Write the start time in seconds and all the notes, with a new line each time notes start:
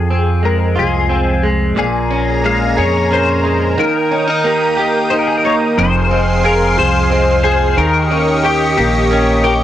Already playing: F2 F4 G#4
0.10 C4
0.43 G#3 A#4
0.76 C2 F4 G#4
1.09 C4
1.43 G#3
1.76 A#1 A#2 F3 G#4 A#4 G#5 A#5
2.11 C#4
2.44 G#3 G#4 F5
2.77 F2 C#4 G#4 C#5
3.11 A#3 C#4 C5
3.44 G#3 C#4
3.78 D#3 A#3 A#4 G5 D#6
4.11 C#4 D#4
4.27 D#4
4.44 A#3 G4
4.77 D#4 G4
5.10 A#3 D#4 C5
5.19 A#4
5.27 G#4
5.37 A#4
5.44 A#3 D#4 C#5
5.77 F1 F2 F3 G#4 C5 F5 C6
6.11 G#3 C4
6.44 C4 G#4 A#4
6.77 C2 F3 G#4 C5
7.10 G#3 C4
7.44 G#4 C5
7.77 D#2 D#3 G4 A#4 D#5 C#6
8.10 A#3 C#4
8.44 C#4 G4
8.77 A#1 A#3 G4
9.11 A#3 C#4
9.44 G4 A#4